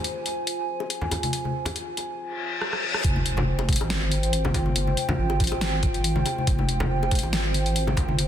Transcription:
Already playing: F4 C5 G#5
0.04 closed hi-hat
0.26 closed hi-hat
0.47 closed hi-hat
0.80 high bongo
0.90 closed hi-hat
1.02 low conga
1.11 closed hi-hat, high bongo, low conga
1.23 closed hi-hat, high conga
1.33 closed hi-hat
1.45 high conga
1.65 closed hi-hat, high bongo, low conga
1.76 closed hi-hat
1.97 closed hi-hat, high bongo
2.19 reverse cymbal
2.61 cross-stick
2.73 cross-stick
2.94 cross-stick
3.04 F1 F4 C5 G5, kick, closed hi-hat, sub drop
3.16 high conga
3.26 closed hi-hat
3.37 high conga, low conga
3.59 high bongo
3.69 kick, closed hi-hat
3.73 closed hi-hat
3.76 closed hi-hat
3.80 G#1, high bongo
3.90 snare, closed hi-hat
4.12 closed hi-hat
4.23 closed hi-hat
4.33 closed hi-hat
4.45 high bongo, high conga, low conga
4.54 G1, kick, closed hi-hat, low conga
4.66 high conga
4.76 closed hi-hat
4.87 high conga
4.97 closed hi-hat
5.09 high conga, low conga
5.19 G#1
5.30 high bongo
5.40 kick, closed hi-hat
5.44 closed hi-hat
5.47 closed hi-hat
5.52 G#1, high bongo
5.61 snare, closed hi-hat
5.83 kick, closed hi-hat
5.94 closed hi-hat
6.04 closed hi-hat
6.16 high conga
6.26 closed hi-hat, high bongo
6.38 high conga
6.47 F1, kick, closed hi-hat
6.59 high conga
6.69 closed hi-hat
6.80 high conga, low conga
7.03 high bongo
7.11 kick, closed hi-hat
7.15 closed hi-hat
7.19 closed hi-hat
7.23 G#1, high bongo
7.33 snare, closed hi-hat
7.54 closed hi-hat
7.66 closed hi-hat
7.76 closed hi-hat
7.87 high bongo, high conga, low conga
7.97 G1, kick, closed hi-hat, low conga
8.09 high conga
8.19 closed hi-hat

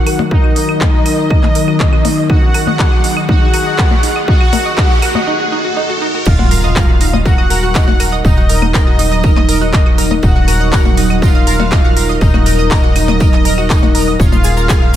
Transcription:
Already playing: D#3 F#3 D#4 F#4 A#4 F#5, riser
0.07 A#4, open hi-hat, claves
0.19 D#5, percussion blips
0.31 D#4 D#5, kick
0.44 F#4, claves
0.56 A#4, open hi-hat
0.69 D#5, claves
0.81 A#4, kick, clap, percussion blips
0.93 F#4
1.06 D#4, open hi-hat, claves
1.18 D#5
1.30 A#4, kick, claves
1.43 D#5, clap, percussion blips
1.55 A#4, open hi-hat
1.68 F#4, claves
1.80 D#4, kick, clap
1.93 F#4, claves
2.05 A#4, open hi-hat, percussion blips
2.18 D#5
2.30 D#4 F#4 G#4 F#5, kick, claves
2.42 F#4
2.54 A#4, open hi-hat, claves
2.67 D#5, percussion blips
2.79 A#4, kick, clap
2.92 F#4, claves
3.04 D#4, open hi-hat
3.17 D#5, claves
3.29 D#4 F#4 F#5, kick, percussion blips
3.42 F#4
3.54 A#4, open hi-hat, claves
3.66 D#5
3.78 A#4, kick, clap, claves
3.91 F#4, percussion blips
4.03 D#4, open hi-hat
4.16 D#5, claves
4.28 D#4 F#4 F#5, kick
4.41 F#4, claves
4.53 A#4, open hi-hat, percussion blips
4.66 D#5
4.77 D#4 F#4 F#5, kick, clap, claves
4.90 F#4
5.02 A#4, open hi-hat, claves
5.15 D#5, percussion blips
5.27 D#4
5.40 F#4
5.52 D#4
5.65 F#4
5.77 D#4
5.90 F#4
6.02 D#4
6.14 F#4
6.25 D#1 F#3 D#4 F4 A#4 D#5 F5, kick, tambourine, crash, impact
6.39 F#4 F#5, snare, percussion blips
6.51 A#4 A#5, open hi-hat, tambourine
6.63 D#5 D#6, closed hi-hat
6.76 A#4 A#5, kick, snare, clap, tambourine, claves
6.89 F#4 F#5
7.00 D#4 D#5, snare, open hi-hat, tambourine
7.13 D#5 D#6, percussion blips
7.25 F#4 A#4 F#5 A#5, kick, tambourine
7.38 D#5 D#6, claves
7.50 A#4 A#5, open hi-hat, tambourine
7.63 F#4 F#5
7.75 D#4 D#5, kick, snare, clap, tambourine
7.88 F#4 F#5, closed hi-hat, percussion blips
8.00 A#4 A#5, open hi-hat, tambourine, claves
8.12 D#5 D#6
8.25 D#1 D#4 D#5, kick, tambourine
8.37 F#4 F#5
8.49 A#4 A#5, open hi-hat, tambourine
8.62 D#5 D#6, percussion blips, claves
8.74 A#4 A#5, kick, snare, clap, tambourine
8.87 F#4 F#5
8.99 D#4 D#5, open hi-hat, tambourine
9.12 D#5 D#6, snare
9.23 A#4 A#5, kick, tambourine, claves
9.36 D#5 D#6, clap, percussion blips
9.48 A#4 A#5, open hi-hat, tambourine
9.61 F#4 F#5
9.73 D#4 D#5, kick, snare, clap, tambourine
9.86 F#4 F#5, claves
9.98 A#4 A#5, open hi-hat, tambourine
10.11 D#5 D#6, percussion blips
10.23 D#1 D#4 F#4 D#5 F#5, kick, tambourine
10.36 F#4 F#5, snare
10.48 A#4 A#5, open hi-hat, tambourine, claves
10.60 D#5 D#6, closed hi-hat
10.72 A#4 A#5, kick, snare, clap, tambourine
10.85 F#4 F#5, percussion blips
10.97 D#4 D#5, snare, open hi-hat, tambourine
11.10 D#5 D#6, claves
11.22 F4 A#4 F5 A#5, kick, tambourine
11.35 D#5 D#6
11.47 A#4 A#5, open hi-hat, tambourine
11.60 F#4 F#5, percussion blips
11.72 D#4 D#5, kick, snare, clap, tambourine, claves
11.84 F#4 F#5, closed hi-hat
11.97 A#4 A#5, open hi-hat, tambourine
12.09 D#5 D#6
12.21 D#1 D#4 D#5, kick, tambourine
12.34 F#4 F#5, percussion blips, claves
12.46 A#4 A#5, open hi-hat, tambourine
12.59 D#5 D#6
12.71 A#4 A#5, kick, snare, clap, tambourine
12.84 F#4 F#5
12.96 D#4 D#5, open hi-hat, tambourine, claves
13.08 D#5 D#6, snare, percussion blips
13.20 A#4 A#5, kick, tambourine
13.33 D#5 D#6, clap
13.45 A#4 A#5, open hi-hat, tambourine
13.58 F#4 F#5, claves
13.70 D#4 D#5, kick, snare, clap, tambourine
13.83 F#4 F#5, percussion blips
13.95 A#4 A#5, open hi-hat, tambourine
14.07 D#5 D#6
14.20 D#1 C#4 F4 G#4 C#5 F5, kick, tambourine, shaker
14.32 F4 F5, snare, percussion blips, shaker
14.44 G#4 G#5, open hi-hat, tambourine, shaker
14.57 A#4 A#5, closed hi-hat, shaker
14.69 G#4 G#5, kick, snare, clap, tambourine, claves, shaker
14.82 F4 F5

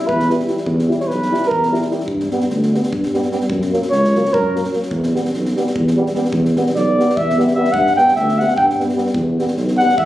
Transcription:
0.08 E2 B4, kick
0.20 snare
0.29 G3 E4, snare
0.40 snare
0.47 G3 E4, snare
0.57 snare
0.66 E2, kick
0.79 snare
0.88 G3 E4, snare
1.00 C#5, snare
1.07 B1 B4, snare
1.22 snare
1.31 G3 E4, snare
1.43 snare
1.47 E2 A#4, kick
1.63 snare
1.71 G3 E4, snare
1.82 snare
1.89 G3 E4, snare
2.00 snare
2.07 G2, kick
2.20 snare
2.30 G3 B3, snare
2.41 snare
2.50 D2, snare
2.63 snare
2.72 G3 B3, snare
2.83 snare
2.92 G2, kick
3.03 snare
3.13 G3 B3, snare
3.22 snare
3.30 G3 B3, snare
3.41 snare
3.50 F#2, kick
3.62 snare
3.72 F#3 A#3, snare
3.82 snare
3.90 C#2 C#5, snare
4.04 snare
4.15 F#3 A#3, snare
4.25 snare
4.34 F#2 A#4, kick
4.54 F#3 A#3, snare
4.64 snare
4.71 F#3 A#3, snare
4.83 snare
4.91 E2, kick
5.03 snare
5.12 G3 B3, snare
5.25 snare
5.34 B1, snare
5.45 snare
5.56 G3 B3, snare
5.67 snare
5.75 E2, kick
5.87 snare
5.96 G3 B3
6.06 snare
6.13 G3 B3, snare
6.25 snare
6.32 E2, kick
6.45 snare
6.55 G3 B3, snare
6.66 snare
6.74 B1 D5, snare
6.98 G3 B3, snare
7.09 snare
7.16 E2 E5, kick
7.30 snare
7.37 G3 B3, snare
7.48 snare
7.54 G3 B3 E5
7.65 snare
7.72 G2 F#5, kick
7.87 snare
7.96 G3 B3 G5, snare
8.08 snare
8.16 D2 E5, snare
8.29 snare
8.39 G3 B3 F#5, snare
8.48 snare
8.56 G2 G5, kick
8.70 snare
8.78 G3 B3, snare
8.89 snare
8.95 G3 B3, snare
9.06 snare
9.14 E2, kick
9.38 G3 B3, snare
9.48 snare
9.56 B1, snare
9.68 snare
9.78 G3 B3 F#5, snare
9.89 snare
9.97 E2 E5, kick

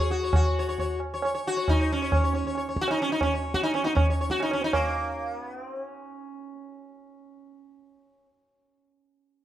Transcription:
Already playing: G#4
0.00 C#5
0.10 F#4, tabla te
0.24 C#5
0.33 F#4, tabla na, tabla ge
0.59 C#5
0.69 C#5
0.78 C#5, tabla tin, tabla ge
1.00 tabla na
1.14 C#5
1.22 C#5, tabla na
1.35 C#5
1.47 F#4
1.57 C#5
1.68 D#4, tabla na, tabla ge
1.80 C#5
1.92 C#4
2.02 C#5
2.12 C#5, tabla na, tabla ge
2.24 C#5
2.33 C#5, tabla te
2.44 C#5, tabla ge
2.55 C#5, tabla na
2.69 C#5
2.76 tabla ke
2.81 F#4
2.88 D#4, tabla na
2.99 C#4, tabla na
3.09 D#4, tabla te
3.21 C#4, tabla na, tabla ge
3.34 C#5
3.54 F#4, tabla ke
3.63 D#4, tabla na
3.74 C#4, tabla na
3.84 D#4 F#4, tabla te
3.95 C#4, tabla na, tabla ge
4.10 C#5
4.21 C#5
4.30 F#4, tabla ke
4.40 D#4, tabla na
4.51 C#4, tabla na
4.61 D#4, tabla te
4.73 A#3, tabla na, tabla ge
5.33 B3
5.59 C4
5.85 C#4

